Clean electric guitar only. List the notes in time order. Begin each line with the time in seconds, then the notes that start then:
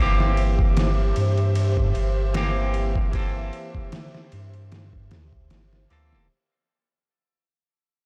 Already playing: E3
0.00 A#3 C4 G4
2.34 E3 A#3 C4 G4
3.12 E3 A#3 C4
3.17 A4
5.90 E3 A#3 C4 A4